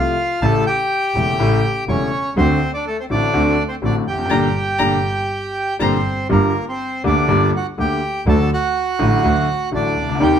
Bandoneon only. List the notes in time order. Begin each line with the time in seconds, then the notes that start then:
Already playing: F4 F5
0.42 A4 A5
0.66 G4 G5
1.89 C#4 C#5
2.38 C4 C5
2.74 D4 D5
2.87 A3 A4
3.00 C4 C5
3.11 D4 D5
3.68 C4 C5
3.85 D4 D5
4.08 G4 G5
5.82 C4 C5
6.31 A#3 A#4
6.69 C4 C5
7.06 D4 D5
7.56 F#4 F#5
7.80 G4 G5
8.29 A4 A5
8.53 F#4 F#5
9.74 D4 D5
10.22 G4 G5